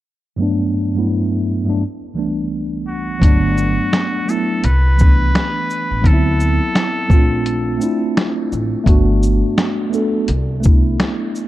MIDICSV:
0, 0, Header, 1, 5, 480
1, 0, Start_track
1, 0, Key_signature, 1, "major"
1, 0, Tempo, 705882
1, 270, Time_signature, 4, 2, 24, 8
1, 7806, End_track
2, 0, Start_track
2, 0, Title_t, "Muted trumpet"
2, 0, Program_c, 0, 59
2, 1961, Note_on_c, 0, 66, 92
2, 2922, Note_on_c, 0, 69, 96
2, 2932, Note_off_c, 0, 66, 0
2, 3158, Note_on_c, 0, 71, 108
2, 3169, Note_off_c, 0, 69, 0
2, 4124, Note_on_c, 0, 69, 107
2, 4134, Note_off_c, 0, 71, 0
2, 5557, Note_off_c, 0, 69, 0
2, 7806, End_track
3, 0, Start_track
3, 0, Title_t, "Tine electric piano"
3, 0, Program_c, 1, 4
3, 249, Note_on_c, 1, 43, 93
3, 258, Note_on_c, 1, 54, 80
3, 267, Note_on_c, 1, 57, 80
3, 276, Note_on_c, 1, 59, 92
3, 286, Note_on_c, 1, 62, 101
3, 396, Control_c, 1, 64, 127
3, 580, Note_off_c, 1, 43, 0
3, 585, Note_off_c, 1, 54, 0
3, 589, Note_off_c, 1, 57, 0
3, 594, Note_off_c, 1, 59, 0
3, 598, Note_off_c, 1, 62, 0
3, 637, Note_on_c, 1, 43, 79
3, 646, Note_on_c, 1, 54, 57
3, 654, Note_on_c, 1, 57, 71
3, 662, Note_on_c, 1, 59, 72
3, 671, Note_on_c, 1, 64, 78
3, 1043, Note_off_c, 1, 43, 0
3, 1048, Note_off_c, 1, 54, 0
3, 1052, Note_off_c, 1, 57, 0
3, 1056, Note_off_c, 1, 59, 0
3, 1060, Note_off_c, 1, 64, 0
3, 1116, Note_on_c, 1, 43, 74
3, 1125, Note_on_c, 1, 54, 64
3, 1134, Note_on_c, 1, 57, 63
3, 1143, Note_on_c, 1, 59, 62
3, 1153, Note_on_c, 1, 62, 84
3, 1222, Note_off_c, 1, 43, 0
3, 1227, Note_off_c, 1, 54, 0
3, 1232, Note_off_c, 1, 57, 0
3, 1236, Note_off_c, 1, 59, 0
3, 1238, Control_c, 1, 64, 0
3, 1241, Note_off_c, 1, 62, 0
3, 1357, Control_c, 1, 64, 127
3, 1452, Note_on_c, 1, 36, 64
3, 1460, Note_on_c, 1, 52, 63
3, 1465, Note_on_c, 1, 55, 59
3, 1473, Note_on_c, 1, 57, 66
3, 1481, Note_on_c, 1, 59, 66
3, 1487, Note_on_c, 1, 62, 79
3, 2096, Note_off_c, 1, 36, 0
3, 2100, Note_off_c, 1, 52, 0
3, 2102, Note_off_c, 1, 55, 0
3, 2106, Note_off_c, 1, 57, 0
3, 2110, Note_off_c, 1, 59, 0
3, 2114, Note_off_c, 1, 62, 0
3, 2169, Note_on_c, 1, 54, 93
3, 2185, Note_on_c, 1, 57, 74
3, 2195, Note_on_c, 1, 59, 87
3, 2199, Control_c, 1, 64, 0
3, 2206, Note_on_c, 1, 62, 99
3, 2298, Control_c, 1, 64, 127
3, 2815, Note_off_c, 1, 54, 0
3, 2822, Note_off_c, 1, 57, 0
3, 2827, Note_off_c, 1, 59, 0
3, 2833, Note_off_c, 1, 62, 0
3, 2891, Note_on_c, 1, 54, 65
3, 2903, Note_on_c, 1, 57, 63
3, 2914, Note_on_c, 1, 59, 70
3, 2927, Note_on_c, 1, 64, 79
3, 3140, Note_off_c, 1, 54, 0
3, 3147, Note_off_c, 1, 57, 0
3, 3152, Note_off_c, 1, 59, 0
3, 3159, Note_off_c, 1, 64, 0
3, 3160, Control_c, 1, 64, 0
3, 3272, Control_c, 1, 64, 127
3, 3373, Note_on_c, 1, 52, 61
3, 3385, Note_on_c, 1, 57, 62
3, 3399, Note_on_c, 1, 59, 64
3, 3410, Note_on_c, 1, 62, 71
3, 4016, Note_off_c, 1, 52, 0
3, 4022, Note_off_c, 1, 57, 0
3, 4029, Note_off_c, 1, 59, 0
3, 4035, Note_off_c, 1, 62, 0
3, 4090, Note_on_c, 1, 54, 85
3, 4102, Note_on_c, 1, 59, 84
3, 4114, Note_on_c, 1, 60, 87
3, 4121, Control_c, 1, 64, 0
3, 4125, Note_on_c, 1, 63, 80
3, 4170, Note_off_c, 1, 63, 0
3, 4170, Note_on_c, 1, 64, 103
3, 4221, Control_c, 1, 64, 127
3, 4735, Note_off_c, 1, 54, 0
3, 4741, Note_off_c, 1, 59, 0
3, 4747, Note_off_c, 1, 60, 0
3, 4775, Note_off_c, 1, 64, 0
3, 4816, Note_on_c, 1, 57, 80
3, 4827, Note_on_c, 1, 60, 86
3, 4838, Note_on_c, 1, 61, 59
3, 4839, Control_c, 1, 64, 0
3, 4850, Note_on_c, 1, 65, 102
3, 4882, Note_on_c, 1, 62, 80
3, 4886, Note_off_c, 1, 61, 0
3, 4954, Control_c, 1, 64, 127
3, 5246, Note_off_c, 1, 57, 0
3, 5252, Note_off_c, 1, 60, 0
3, 5263, Note_off_c, 1, 65, 0
3, 5279, Note_off_c, 1, 62, 0
3, 5290, Note_on_c, 1, 57, 80
3, 5302, Note_on_c, 1, 60, 68
3, 5316, Note_on_c, 1, 62, 74
3, 5326, Note_on_c, 1, 64, 90
3, 5935, Note_off_c, 1, 57, 0
3, 5941, Note_off_c, 1, 60, 0
3, 5948, Note_off_c, 1, 62, 0
3, 5953, Note_off_c, 1, 64, 0
3, 6012, Note_on_c, 1, 57, 104
3, 6025, Note_on_c, 1, 59, 99
3, 6036, Note_on_c, 1, 62, 96
3, 6040, Control_c, 1, 64, 0
3, 6047, Note_on_c, 1, 66, 123
3, 6172, Control_c, 1, 64, 127
3, 6656, Note_off_c, 1, 57, 0
3, 6662, Note_off_c, 1, 59, 0
3, 6668, Note_off_c, 1, 62, 0
3, 6673, Note_off_c, 1, 66, 0
3, 6730, Note_on_c, 1, 57, 79
3, 6740, Note_on_c, 1, 59, 85
3, 6755, Note_on_c, 1, 62, 79
3, 6765, Note_on_c, 1, 69, 89
3, 6980, Note_off_c, 1, 57, 0
3, 6985, Note_off_c, 1, 59, 0
3, 6992, Note_off_c, 1, 62, 0
3, 6997, Note_off_c, 1, 69, 0
3, 6998, Control_c, 1, 64, 0
3, 7109, Control_c, 1, 64, 127
3, 7209, Note_on_c, 1, 57, 85
3, 7222, Note_on_c, 1, 59, 75
3, 7234, Note_on_c, 1, 62, 72
3, 7247, Note_on_c, 1, 64, 84
3, 7806, Note_off_c, 1, 57, 0
3, 7806, Note_off_c, 1, 59, 0
3, 7806, Note_off_c, 1, 62, 0
3, 7806, Note_off_c, 1, 64, 0
3, 7806, End_track
4, 0, Start_track
4, 0, Title_t, "Upright bass"
4, 0, Program_c, 2, 32
4, 2191, Note_on_c, 2, 31, 101
4, 2552, Note_off_c, 2, 31, 0
4, 3157, Note_on_c, 2, 36, 100
4, 3609, Note_off_c, 2, 36, 0
4, 4019, Note_on_c, 2, 33, 71
4, 4109, Note_off_c, 2, 33, 0
4, 4114, Note_on_c, 2, 38, 110
4, 4474, Note_off_c, 2, 38, 0
4, 4832, Note_on_c, 2, 34, 76
4, 5286, Note_off_c, 2, 34, 0
4, 5796, Note_on_c, 2, 33, 86
4, 5927, Note_off_c, 2, 33, 0
4, 6031, Note_on_c, 2, 31, 111
4, 6392, Note_off_c, 2, 31, 0
4, 6993, Note_on_c, 2, 36, 99
4, 7447, Note_off_c, 2, 36, 0
4, 7806, End_track
5, 0, Start_track
5, 0, Title_t, "Drums"
5, 2187, Note_on_c, 9, 36, 90
5, 2196, Note_on_c, 9, 42, 85
5, 2255, Note_off_c, 9, 36, 0
5, 2264, Note_off_c, 9, 42, 0
5, 2432, Note_on_c, 9, 82, 47
5, 2500, Note_off_c, 9, 82, 0
5, 2673, Note_on_c, 9, 38, 99
5, 2675, Note_on_c, 9, 26, 91
5, 2680, Note_on_c, 9, 42, 59
5, 2741, Note_off_c, 9, 38, 0
5, 2743, Note_off_c, 9, 26, 0
5, 2748, Note_off_c, 9, 42, 0
5, 2915, Note_on_c, 9, 82, 39
5, 2983, Note_off_c, 9, 82, 0
5, 3153, Note_on_c, 9, 42, 76
5, 3221, Note_off_c, 9, 42, 0
5, 3392, Note_on_c, 9, 82, 47
5, 3407, Note_on_c, 9, 36, 88
5, 3460, Note_off_c, 9, 82, 0
5, 3475, Note_off_c, 9, 36, 0
5, 3640, Note_on_c, 9, 38, 96
5, 3640, Note_on_c, 9, 42, 60
5, 3642, Note_on_c, 9, 26, 73
5, 3708, Note_off_c, 9, 38, 0
5, 3708, Note_off_c, 9, 42, 0
5, 3710, Note_off_c, 9, 26, 0
5, 3877, Note_on_c, 9, 82, 41
5, 3945, Note_off_c, 9, 82, 0
5, 4108, Note_on_c, 9, 36, 96
5, 4118, Note_on_c, 9, 42, 82
5, 4176, Note_off_c, 9, 36, 0
5, 4186, Note_off_c, 9, 42, 0
5, 4352, Note_on_c, 9, 82, 46
5, 4420, Note_off_c, 9, 82, 0
5, 4593, Note_on_c, 9, 38, 109
5, 4595, Note_on_c, 9, 26, 93
5, 4600, Note_on_c, 9, 42, 71
5, 4661, Note_off_c, 9, 38, 0
5, 4663, Note_off_c, 9, 26, 0
5, 4668, Note_off_c, 9, 42, 0
5, 4827, Note_on_c, 9, 36, 101
5, 4832, Note_on_c, 9, 82, 39
5, 4895, Note_off_c, 9, 36, 0
5, 4900, Note_off_c, 9, 82, 0
5, 5073, Note_on_c, 9, 42, 76
5, 5141, Note_off_c, 9, 42, 0
5, 5312, Note_on_c, 9, 82, 50
5, 5380, Note_off_c, 9, 82, 0
5, 5557, Note_on_c, 9, 38, 96
5, 5558, Note_on_c, 9, 42, 69
5, 5560, Note_on_c, 9, 26, 74
5, 5625, Note_off_c, 9, 38, 0
5, 5626, Note_off_c, 9, 42, 0
5, 5628, Note_off_c, 9, 26, 0
5, 5795, Note_on_c, 9, 82, 41
5, 5863, Note_off_c, 9, 82, 0
5, 6027, Note_on_c, 9, 36, 95
5, 6035, Note_on_c, 9, 42, 82
5, 6095, Note_off_c, 9, 36, 0
5, 6103, Note_off_c, 9, 42, 0
5, 6275, Note_on_c, 9, 82, 48
5, 6343, Note_off_c, 9, 82, 0
5, 6513, Note_on_c, 9, 38, 110
5, 6515, Note_on_c, 9, 26, 90
5, 6521, Note_on_c, 9, 42, 69
5, 6581, Note_off_c, 9, 38, 0
5, 6583, Note_off_c, 9, 26, 0
5, 6589, Note_off_c, 9, 42, 0
5, 6754, Note_on_c, 9, 82, 41
5, 6822, Note_off_c, 9, 82, 0
5, 6991, Note_on_c, 9, 42, 79
5, 7059, Note_off_c, 9, 42, 0
5, 7231, Note_on_c, 9, 82, 53
5, 7246, Note_on_c, 9, 36, 93
5, 7299, Note_off_c, 9, 82, 0
5, 7314, Note_off_c, 9, 36, 0
5, 7478, Note_on_c, 9, 38, 97
5, 7479, Note_on_c, 9, 42, 65
5, 7480, Note_on_c, 9, 26, 79
5, 7546, Note_off_c, 9, 38, 0
5, 7547, Note_off_c, 9, 42, 0
5, 7548, Note_off_c, 9, 26, 0
5, 7720, Note_on_c, 9, 82, 41
5, 7788, Note_off_c, 9, 82, 0
5, 7806, End_track
0, 0, End_of_file